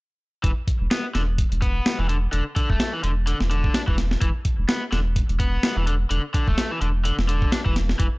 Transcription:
0.44 E1 E3, kick, closed hi-hat
0.68 kick, closed hi-hat
0.81 E1
0.91 B3, snare, closed hi-hat
1.15 E1 D3, snare, closed hi-hat
1.38 kick, closed hi-hat
1.52 E1, closed hi-hat
1.62 B3, kick, closed hi-hat
1.86 snare, closed hi-hat
1.99 E1 E3
2.09 D3, closed hi-hat
2.32 E1 D3, closed hi-hat
2.56 D3, kick, closed hi-hat
2.70 E1 A3, kick
2.80 snare, closed hi-hat
2.93 E3
3.04 E1 D3, closed hi-hat
3.27 D3, closed hi-hat
3.40 E1, snare
3.51 D3, closed hi-hat
3.64 kick
3.74 D4, snare, closed hi-hat
3.88 E1 E3, kick
3.98 snare, closed hi-hat
4.11 snare
4.21 E1 E3, kick, closed hi-hat
4.45 kick, closed hi-hat
4.59 E1
4.69 B3, snare, closed hi-hat
4.92 E1 D3, snare, closed hi-hat
5.16 kick, closed hi-hat
5.29 E1, closed hi-hat
5.40 B3, kick, closed hi-hat
5.63 snare, closed hi-hat
5.77 E1 E3
5.87 D3, closed hi-hat
6.10 E1 D3, closed hi-hat
6.34 D3, kick, closed hi-hat
6.48 E1 A3, kick
6.58 snare, closed hi-hat
6.71 E3
6.81 E1 D3, closed hi-hat
7.05 D3, closed hi-hat
7.18 E1, snare
7.29 D3, closed hi-hat
7.42 kick
7.52 D4, snare, closed hi-hat
7.66 E1 E3, kick
7.76 snare, closed hi-hat
7.89 snare
7.99 E1 E3, kick, closed hi-hat

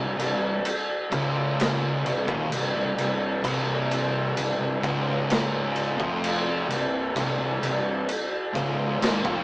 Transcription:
Already playing: C1 C2
0.18 C1 C2, crash
0.65 crash
1.12 C#1 C#2, kick, crash
1.60 snare, crash
2.03 C1 C2, crash
2.27 D#1 D#2, kick
2.51 C1 C2, crash
2.75 C1 C2
2.97 C1 C2, crash
3.44 C1 C2, kick, crash
3.91 crash
4.36 C1 C2, crash
4.60 C1 C2
4.83 C#1 C#2, kick, crash
5.30 snare, crash
5.76 crash
6.00 F1 F2, kick
6.24 crash
6.69 C1 C2, crash
7.16 C1 C2, kick, crash
7.39 C1 C2
7.63 C1 C2, crash
8.09 crash
8.54 C#1 C#2, kick, crash
9.01 G#1 G#2, snare, crash
9.24 F1 F2, kick

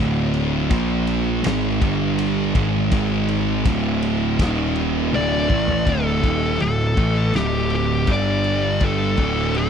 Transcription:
Already playing: D1 D2 A2 D3
0.34 ride
0.69 A#1 A#2 F3 A#3, kick, ride
1.07 ride
1.43 G#1 G#2 D#3 G#3, snare, ride
1.80 G1 G2 D3 G3, kick, ride
2.18 ride
2.55 G#1 G#2 D#3 G#3, kick, ride
2.91 G#1 G#2 D#3 G#3, kick, ride
3.28 ride
3.65 D1 D2 A2 D3, kick, ride
4.02 ride
4.39 D#1 D#2 A#2 D#3, kick, snare, ride
4.76 ride
5.12 D1 D2 A2 D3 D5, high tom
5.49 A1 A2 E3 A3, kick
5.68 floor tom
5.85 D1 D2 A2 D3 A4, kick, crash
6.22 D#1 D#2 A#2 D#3, kick, crash
6.60 D1 D2 A2 A4, crash
6.97 A1 A2 E3 A3, kick, crash
7.33 D1 D2 A2 D3 G4, snare, crash
7.70 crash
7.75 G4
8.07 G1 G2 D3 G3, kick, crash
8.11 D5
8.44 crash
8.80 A4, kick, crash
9.17 D1 D2 A2 D3, kick, crash
9.54 A4, crash

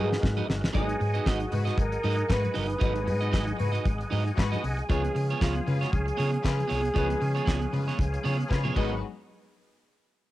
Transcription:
Already playing: G#2 F#3 G#3 B3 D#4 F#4 G#4 A#4 B4
0.04 G#4
0.11 muted clean electric guitar stroke, snare
0.22 G#2, muted clean electric guitar stroke, kick, snare, muted conga, high conga
0.37 D#4 F#4 B4 D#5, muted conga, high conga
0.47 G1, muted clean electric guitar stroke, snare, low conga
0.61 muted clean electric guitar stroke, snare
0.73 G#1 F#3 G#3 A#3 D#4 F#4 G#4 B4 D#5 F#5 G#5, kick, closed hi-hat, muted conga, low conga
0.77 B3 G#4
0.89 muted clean electric guitar stroke, closed hi-hat
1.00 G#2, muted clean electric guitar stroke, open hi-hat
1.14 D#4 F#4 B4 D#5, closed hi-hat
1.25 G#1 D#4 F#4 B4 D#5, kick, snare, clap, muted conga, high conga
1.40 muted clean electric guitar stroke, closed hi-hat, muted conga, high conga
1.52 G#2 G#3 F#4 B4, muted clean electric guitar stroke, open hi-hat, low conga
1.65 D#4 F#4 B4 D#5, snare, closed hi-hat
1.77 G#1 A#4, muted clean electric guitar stroke, kick, closed hi-hat, high conga
1.92 muted clean electric guitar stroke, closed hi-hat, muted conga
2.04 G#2 D#4 F#4 B4 D#5, open hi-hat, high conga
2.17 muted clean electric guitar stroke, closed hi-hat
2.29 G#2 G#3 F#4 B4, muted clean electric guitar stroke, kick, snare, clap, muted conga, high conga
2.42 muted clean electric guitar stroke, closed hi-hat, muted conga, high conga
2.54 G1 D#4 F#4 B4 D#5, open hi-hat, low conga
2.59 B4
2.68 muted clean electric guitar stroke, closed hi-hat
2.79 G#1 F#3 G#3 B3 D#4 F#4 B4 D#5, kick, closed hi-hat, low conga
2.83 D#4 A4
2.90 B4
2.95 muted clean electric guitar stroke, closed hi-hat, muted conga
3.06 G#2, muted clean electric guitar stroke, open hi-hat
3.21 D#4 F#4 B4 D#5, closed hi-hat
3.32 G#1 D#4 F#4 B4 D#5, kick, snare, clap, muted conga, high conga
3.46 muted clean electric guitar stroke, closed hi-hat, muted conga, high conga
3.57 G#2 G#3 F#4 B4, muted clean electric guitar stroke, open hi-hat, low conga
3.72 D#4 F#4 B4 D#5, closed hi-hat
3.85 G#1, kick, closed hi-hat, muted conga, high conga
3.98 muted clean electric guitar stroke, closed hi-hat, muted conga
4.10 G#2 D#4 F#4 B4 D#5, open hi-hat, high conga
4.25 muted clean electric guitar stroke, closed hi-hat
4.37 G#2 G#3 F#4 B4, muted clean electric guitar stroke, kick, snare, clap, high conga
4.52 D#4 F#4 B4 D#5, closed hi-hat, muted conga, high conga
4.64 C2, muted clean electric guitar stroke, open hi-hat, low conga
4.77 muted clean electric guitar stroke, closed hi-hat
4.89 C#2 F3 G#3 B3 C#4 F4 G#4 C#5 F5, kick, closed hi-hat, muted conga, low conga
5.04 muted clean electric guitar stroke, closed hi-hat, muted conga
5.15 C#3, muted clean electric guitar stroke, open hi-hat
5.30 B3 F4 G#4 C#5, closed hi-hat
5.41 C#2 B3 F4 G#4 C#5, kick, snare, clap, muted conga, high conga
5.55 muted clean electric guitar stroke, closed hi-hat, muted conga, high conga
5.67 C#3 G#3 F4 B4, muted clean electric guitar stroke, open hi-hat, low conga
5.81 B3 F4 F#4 G#4 C#5, snare, closed hi-hat
5.91 C#2 G#4, muted clean electric guitar stroke, kick, closed hi-hat, muted conga, high conga
6.06 muted clean electric guitar stroke, closed hi-hat
6.17 C#3 B3 F4 G#4 C#5, open hi-hat, high conga
6.32 muted clean electric guitar stroke, closed hi-hat
6.43 C#3 G#3 F4 B4, muted clean electric guitar stroke, kick, snare, clap, high conga
6.58 muted clean electric guitar stroke, closed hi-hat, high conga
6.68 C2 B3 F4 G#4 C#5, open hi-hat, low conga
6.82 muted clean electric guitar stroke, closed hi-hat
6.94 C#2 F3 G#3 B3 C#4 F4 G#4 C#5, kick, closed hi-hat, muted conga, low conga
6.98 B4
7.09 muted clean electric guitar stroke, closed hi-hat, muted conga
7.20 C#3, muted clean electric guitar stroke, open hi-hat
7.35 B3 F4 G#4 C#5, closed hi-hat
7.45 C#2 B3 F4 G#4 C#5, kick, snare, clap, muted conga, high conga
7.61 muted clean electric guitar stroke, closed hi-hat, high conga
7.72 C#3 G#3 F4 B4, muted clean electric guitar stroke, open hi-hat, low conga
7.88 B3 F4 G#4 C#5, snare, closed hi-hat
7.99 C#2, muted clean electric guitar stroke, kick, closed hi-hat, high conga
8.13 muted clean electric guitar stroke, closed hi-hat, muted conga
8.24 C#3 B3 F4 G#4 C#5, open hi-hat, high conga
8.38 muted clean electric guitar stroke, closed hi-hat
8.49 C#3 G#3 F4 B4, muted clean electric guitar stroke, kick, snare, high conga
8.64 B3 F4 G#4 C#5, high tom, muted conga, high conga
8.75 G#1 F#3 G#3 B3 D#4 F#4 G#4 A#4 B4 D#5 F#5, kick, crash, high conga

